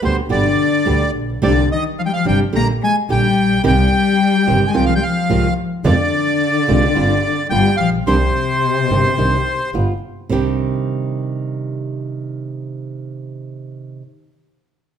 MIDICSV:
0, 0, Header, 1, 5, 480
1, 0, Start_track
1, 0, Key_signature, -3, "minor"
1, 0, Tempo, 555042
1, 1230, Time_signature, 4, 2, 24, 8
1, 12956, End_track
2, 0, Start_track
2, 0, Title_t, "Bandoneon"
2, 0, Program_c, 0, 23
2, 39, Note_on_c, 0, 72, 80
2, 143, Note_off_c, 0, 72, 0
2, 273, Note_on_c, 0, 74, 89
2, 959, Note_off_c, 0, 74, 0
2, 1242, Note_on_c, 0, 74, 86
2, 1460, Note_off_c, 0, 74, 0
2, 1487, Note_on_c, 0, 75, 91
2, 1592, Note_off_c, 0, 75, 0
2, 1722, Note_on_c, 0, 77, 84
2, 1747, Note_off_c, 0, 77, 0
2, 1779, Note_on_c, 0, 79, 78
2, 1836, Note_off_c, 0, 79, 0
2, 1843, Note_on_c, 0, 77, 90
2, 1951, Note_off_c, 0, 77, 0
2, 1970, Note_on_c, 0, 79, 91
2, 2074, Note_off_c, 0, 79, 0
2, 2210, Note_on_c, 0, 82, 106
2, 2314, Note_off_c, 0, 82, 0
2, 2456, Note_on_c, 0, 80, 98
2, 2559, Note_off_c, 0, 80, 0
2, 2693, Note_on_c, 0, 79, 95
2, 3130, Note_off_c, 0, 79, 0
2, 3173, Note_on_c, 0, 79, 97
2, 4044, Note_on_c, 0, 80, 73
2, 4072, Note_off_c, 0, 79, 0
2, 4118, Note_off_c, 0, 80, 0
2, 4118, Note_on_c, 0, 79, 86
2, 4194, Note_off_c, 0, 79, 0
2, 4198, Note_on_c, 0, 77, 87
2, 4273, Note_off_c, 0, 77, 0
2, 4284, Note_on_c, 0, 79, 89
2, 4347, Note_on_c, 0, 77, 85
2, 4355, Note_off_c, 0, 79, 0
2, 4789, Note_off_c, 0, 77, 0
2, 5062, Note_on_c, 0, 74, 93
2, 6462, Note_off_c, 0, 74, 0
2, 6485, Note_on_c, 0, 79, 109
2, 6714, Note_off_c, 0, 79, 0
2, 6718, Note_on_c, 0, 77, 92
2, 6830, Note_off_c, 0, 77, 0
2, 6977, Note_on_c, 0, 72, 94
2, 8393, Note_off_c, 0, 72, 0
2, 12956, End_track
3, 0, Start_track
3, 0, Title_t, "Nylon-string guitar"
3, 0, Program_c, 1, 24
3, 18, Note_on_c, 1, 50, 58
3, 19, Note_on_c, 1, 47, 58
3, 22, Note_on_c, 1, 55, 69
3, 23, Note_on_c, 1, 59, 67
3, 26, Note_on_c, 1, 67, 66
3, 167, Note_off_c, 1, 47, 0
3, 167, Note_off_c, 1, 50, 0
3, 169, Note_off_c, 1, 55, 0
3, 169, Note_off_c, 1, 59, 0
3, 171, Note_off_c, 1, 67, 0
3, 253, Note_on_c, 1, 47, 67
3, 254, Note_on_c, 1, 50, 68
3, 259, Note_on_c, 1, 59, 73
3, 260, Note_on_c, 1, 55, 77
3, 262, Note_on_c, 1, 67, 71
3, 405, Note_off_c, 1, 47, 0
3, 406, Note_off_c, 1, 50, 0
3, 408, Note_off_c, 1, 59, 0
3, 409, Note_off_c, 1, 55, 0
3, 410, Note_off_c, 1, 67, 0
3, 739, Note_on_c, 1, 47, 67
3, 742, Note_on_c, 1, 55, 67
3, 743, Note_on_c, 1, 50, 68
3, 744, Note_on_c, 1, 59, 61
3, 749, Note_on_c, 1, 67, 73
3, 891, Note_off_c, 1, 47, 0
3, 892, Note_off_c, 1, 55, 0
3, 893, Note_off_c, 1, 50, 0
3, 893, Note_off_c, 1, 59, 0
3, 896, Note_off_c, 1, 67, 0
3, 1226, Note_on_c, 1, 48, 87
3, 1227, Note_on_c, 1, 55, 82
3, 1234, Note_on_c, 1, 60, 79
3, 1234, Note_on_c, 1, 62, 82
3, 1238, Note_on_c, 1, 67, 94
3, 1306, Note_off_c, 1, 48, 0
3, 1306, Note_off_c, 1, 55, 0
3, 1310, Note_off_c, 1, 60, 0
3, 1310, Note_off_c, 1, 62, 0
3, 1312, Note_off_c, 1, 67, 0
3, 1946, Note_on_c, 1, 48, 61
3, 1950, Note_on_c, 1, 55, 59
3, 1954, Note_on_c, 1, 60, 65
3, 1956, Note_on_c, 1, 62, 63
3, 1957, Note_on_c, 1, 67, 70
3, 2097, Note_off_c, 1, 48, 0
3, 2099, Note_off_c, 1, 55, 0
3, 2101, Note_off_c, 1, 60, 0
3, 2102, Note_off_c, 1, 62, 0
3, 2102, Note_off_c, 1, 67, 0
3, 2184, Note_on_c, 1, 50, 72
3, 2188, Note_on_c, 1, 55, 70
3, 2188, Note_on_c, 1, 62, 70
3, 2192, Note_on_c, 1, 67, 67
3, 2336, Note_off_c, 1, 50, 0
3, 2337, Note_off_c, 1, 55, 0
3, 2338, Note_off_c, 1, 62, 0
3, 2340, Note_off_c, 1, 67, 0
3, 2671, Note_on_c, 1, 50, 63
3, 2676, Note_on_c, 1, 55, 63
3, 2680, Note_on_c, 1, 62, 72
3, 2682, Note_on_c, 1, 67, 83
3, 2819, Note_off_c, 1, 50, 0
3, 2822, Note_off_c, 1, 55, 0
3, 2823, Note_off_c, 1, 62, 0
3, 2825, Note_off_c, 1, 67, 0
3, 3143, Note_on_c, 1, 48, 80
3, 3146, Note_on_c, 1, 55, 94
3, 3147, Note_on_c, 1, 51, 101
3, 3153, Note_on_c, 1, 60, 100
3, 3153, Note_on_c, 1, 67, 98
3, 3226, Note_off_c, 1, 48, 0
3, 3228, Note_off_c, 1, 51, 0
3, 3228, Note_off_c, 1, 55, 0
3, 3231, Note_off_c, 1, 60, 0
3, 3231, Note_off_c, 1, 67, 0
3, 3866, Note_on_c, 1, 48, 62
3, 3867, Note_on_c, 1, 51, 70
3, 3868, Note_on_c, 1, 55, 62
3, 3870, Note_on_c, 1, 60, 76
3, 3872, Note_on_c, 1, 67, 75
3, 4014, Note_off_c, 1, 48, 0
3, 4015, Note_off_c, 1, 51, 0
3, 4016, Note_off_c, 1, 55, 0
3, 4017, Note_off_c, 1, 60, 0
3, 4018, Note_off_c, 1, 67, 0
3, 4100, Note_on_c, 1, 48, 69
3, 4101, Note_on_c, 1, 51, 73
3, 4105, Note_on_c, 1, 56, 73
3, 4105, Note_on_c, 1, 65, 75
3, 4107, Note_on_c, 1, 60, 76
3, 4251, Note_off_c, 1, 48, 0
3, 4251, Note_off_c, 1, 51, 0
3, 4253, Note_off_c, 1, 56, 0
3, 4253, Note_off_c, 1, 65, 0
3, 4254, Note_off_c, 1, 60, 0
3, 4580, Note_on_c, 1, 48, 71
3, 4580, Note_on_c, 1, 51, 72
3, 4587, Note_on_c, 1, 56, 75
3, 4588, Note_on_c, 1, 60, 69
3, 4588, Note_on_c, 1, 65, 78
3, 4728, Note_off_c, 1, 48, 0
3, 4728, Note_off_c, 1, 51, 0
3, 4731, Note_off_c, 1, 56, 0
3, 4732, Note_off_c, 1, 60, 0
3, 4732, Note_off_c, 1, 65, 0
3, 5052, Note_on_c, 1, 48, 86
3, 5055, Note_on_c, 1, 51, 90
3, 5057, Note_on_c, 1, 56, 96
3, 5062, Note_on_c, 1, 60, 93
3, 5065, Note_on_c, 1, 65, 88
3, 5134, Note_off_c, 1, 48, 0
3, 5135, Note_off_c, 1, 51, 0
3, 5136, Note_off_c, 1, 56, 0
3, 5138, Note_off_c, 1, 60, 0
3, 5140, Note_off_c, 1, 65, 0
3, 5775, Note_on_c, 1, 48, 64
3, 5777, Note_on_c, 1, 51, 67
3, 5781, Note_on_c, 1, 56, 76
3, 5782, Note_on_c, 1, 60, 71
3, 5785, Note_on_c, 1, 65, 76
3, 5924, Note_off_c, 1, 48, 0
3, 5925, Note_off_c, 1, 51, 0
3, 5927, Note_off_c, 1, 56, 0
3, 5927, Note_off_c, 1, 60, 0
3, 5929, Note_off_c, 1, 65, 0
3, 6011, Note_on_c, 1, 55, 76
3, 6017, Note_on_c, 1, 60, 76
3, 6019, Note_on_c, 1, 65, 86
3, 6160, Note_off_c, 1, 55, 0
3, 6163, Note_off_c, 1, 60, 0
3, 6165, Note_off_c, 1, 65, 0
3, 6494, Note_on_c, 1, 55, 72
3, 6499, Note_on_c, 1, 59, 64
3, 6503, Note_on_c, 1, 65, 74
3, 6642, Note_off_c, 1, 55, 0
3, 6644, Note_off_c, 1, 59, 0
3, 6646, Note_off_c, 1, 65, 0
3, 6979, Note_on_c, 1, 51, 94
3, 6980, Note_on_c, 1, 48, 86
3, 6981, Note_on_c, 1, 62, 88
3, 6983, Note_on_c, 1, 55, 92
3, 6985, Note_on_c, 1, 67, 98
3, 7055, Note_off_c, 1, 51, 0
3, 7056, Note_off_c, 1, 48, 0
3, 7057, Note_off_c, 1, 62, 0
3, 7058, Note_off_c, 1, 55, 0
3, 7058, Note_off_c, 1, 67, 0
3, 7702, Note_on_c, 1, 51, 60
3, 7704, Note_on_c, 1, 48, 63
3, 7705, Note_on_c, 1, 55, 61
3, 7707, Note_on_c, 1, 62, 61
3, 7711, Note_on_c, 1, 67, 66
3, 7848, Note_off_c, 1, 51, 0
3, 7849, Note_off_c, 1, 48, 0
3, 7850, Note_off_c, 1, 55, 0
3, 7851, Note_off_c, 1, 62, 0
3, 7853, Note_off_c, 1, 67, 0
3, 7937, Note_on_c, 1, 48, 63
3, 7942, Note_on_c, 1, 51, 67
3, 7947, Note_on_c, 1, 55, 68
3, 7947, Note_on_c, 1, 62, 73
3, 7947, Note_on_c, 1, 67, 67
3, 8087, Note_off_c, 1, 48, 0
3, 8089, Note_off_c, 1, 51, 0
3, 8092, Note_off_c, 1, 55, 0
3, 8092, Note_off_c, 1, 62, 0
3, 8092, Note_off_c, 1, 67, 0
3, 8422, Note_on_c, 1, 55, 59
3, 8427, Note_on_c, 1, 59, 67
3, 8430, Note_on_c, 1, 65, 67
3, 8574, Note_off_c, 1, 55, 0
3, 8577, Note_off_c, 1, 59, 0
3, 8579, Note_off_c, 1, 65, 0
3, 8903, Note_on_c, 1, 48, 86
3, 8911, Note_on_c, 1, 51, 74
3, 8920, Note_on_c, 1, 55, 78
3, 8924, Note_on_c, 1, 62, 90
3, 8929, Note_on_c, 1, 67, 91
3, 12121, Note_off_c, 1, 48, 0
3, 12125, Note_off_c, 1, 51, 0
3, 12130, Note_off_c, 1, 55, 0
3, 12132, Note_off_c, 1, 62, 0
3, 12135, Note_off_c, 1, 67, 0
3, 12956, End_track
4, 0, Start_track
4, 0, Title_t, "Cello"
4, 0, Program_c, 2, 42
4, 263, Note_on_c, 2, 50, 75
4, 954, Note_off_c, 2, 50, 0
4, 1245, Note_on_c, 2, 50, 70
4, 1462, Note_off_c, 2, 50, 0
4, 1480, Note_on_c, 2, 51, 68
4, 1587, Note_off_c, 2, 51, 0
4, 1718, Note_on_c, 2, 53, 81
4, 1744, Note_off_c, 2, 53, 0
4, 1782, Note_on_c, 2, 55, 64
4, 1834, Note_off_c, 2, 55, 0
4, 1845, Note_on_c, 2, 53, 77
4, 1951, Note_off_c, 2, 53, 0
4, 1962, Note_on_c, 2, 55, 78
4, 2068, Note_off_c, 2, 55, 0
4, 2211, Note_on_c, 2, 58, 86
4, 2315, Note_off_c, 2, 58, 0
4, 2435, Note_on_c, 2, 56, 84
4, 2543, Note_off_c, 2, 56, 0
4, 2683, Note_on_c, 2, 55, 79
4, 3125, Note_off_c, 2, 55, 0
4, 3162, Note_on_c, 2, 55, 89
4, 4006, Note_off_c, 2, 55, 0
4, 4046, Note_on_c, 2, 56, 75
4, 4114, Note_off_c, 2, 56, 0
4, 4122, Note_on_c, 2, 55, 78
4, 4191, Note_off_c, 2, 55, 0
4, 4203, Note_on_c, 2, 53, 74
4, 4270, Note_off_c, 2, 53, 0
4, 4281, Note_on_c, 2, 55, 74
4, 4348, Note_off_c, 2, 55, 0
4, 4363, Note_on_c, 2, 53, 71
4, 4798, Note_off_c, 2, 53, 0
4, 5072, Note_on_c, 2, 50, 84
4, 6467, Note_off_c, 2, 50, 0
4, 6493, Note_on_c, 2, 55, 80
4, 6718, Note_off_c, 2, 55, 0
4, 6732, Note_on_c, 2, 53, 78
4, 6841, Note_off_c, 2, 53, 0
4, 6976, Note_on_c, 2, 48, 81
4, 8393, Note_off_c, 2, 48, 0
4, 12956, End_track
5, 0, Start_track
5, 0, Title_t, "Double bass"
5, 0, Program_c, 3, 43
5, 18, Note_on_c, 3, 38, 60
5, 222, Note_off_c, 3, 38, 0
5, 265, Note_on_c, 3, 31, 59
5, 466, Note_off_c, 3, 31, 0
5, 743, Note_on_c, 3, 38, 57
5, 948, Note_off_c, 3, 38, 0
5, 991, Note_on_c, 3, 34, 54
5, 1224, Note_off_c, 3, 34, 0
5, 1229, Note_on_c, 3, 36, 90
5, 1432, Note_off_c, 3, 36, 0
5, 1954, Note_on_c, 3, 31, 59
5, 2155, Note_off_c, 3, 31, 0
5, 2190, Note_on_c, 3, 34, 59
5, 2393, Note_off_c, 3, 34, 0
5, 2671, Note_on_c, 3, 34, 61
5, 2874, Note_off_c, 3, 34, 0
5, 2911, Note_on_c, 3, 34, 58
5, 3146, Note_off_c, 3, 34, 0
5, 3152, Note_on_c, 3, 36, 95
5, 3354, Note_off_c, 3, 36, 0
5, 3870, Note_on_c, 3, 31, 65
5, 4071, Note_off_c, 3, 31, 0
5, 4110, Note_on_c, 3, 36, 63
5, 4310, Note_off_c, 3, 36, 0
5, 4585, Note_on_c, 3, 36, 61
5, 4785, Note_off_c, 3, 36, 0
5, 5058, Note_on_c, 3, 41, 91
5, 5260, Note_off_c, 3, 41, 0
5, 5785, Note_on_c, 3, 36, 67
5, 5983, Note_off_c, 3, 36, 0
5, 6026, Note_on_c, 3, 31, 64
5, 6222, Note_off_c, 3, 31, 0
5, 6501, Note_on_c, 3, 31, 64
5, 6700, Note_off_c, 3, 31, 0
5, 6736, Note_on_c, 3, 34, 59
5, 6963, Note_off_c, 3, 34, 0
5, 6968, Note_on_c, 3, 36, 93
5, 7174, Note_off_c, 3, 36, 0
5, 7691, Note_on_c, 3, 31, 57
5, 7898, Note_off_c, 3, 31, 0
5, 7934, Note_on_c, 3, 36, 56
5, 8141, Note_off_c, 3, 36, 0
5, 8422, Note_on_c, 3, 31, 59
5, 8630, Note_off_c, 3, 31, 0
5, 8909, Note_on_c, 3, 36, 55
5, 9113, Note_off_c, 3, 36, 0
5, 12956, End_track
0, 0, End_of_file